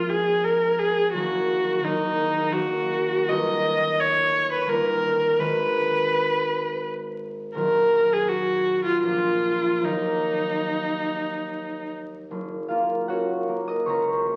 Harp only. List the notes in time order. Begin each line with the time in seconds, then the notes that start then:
Already playing: G#1 F3 G#3 A#3 D4 F4
1.14 F#1 D#3 A#3 D#4
1.81 F#1 D#3 A#3
1.86 D#4
2.51 F#1 D#3 A#3 D#4
3.28 G1 D#3 A#3
3.32 D#4
4.66 G1 D#3
4.71 A#3 D#4
5.38 G#1 D#3 G#3 D#4
7.55 A#1 D#3 F#3 D#4
9.01 A#1 F3 A#3
9.06 D4
9.82 D#2 F#3 A#3
9.87 D#4
12.31 F#1
12.68 A#3 F4 F5
13.08 C#4 F#4 C#5 F#5
13.49 A#3
13.68 D#5 D#6
13.86 C#2 C#5 A#5 C#6
14.26 A#3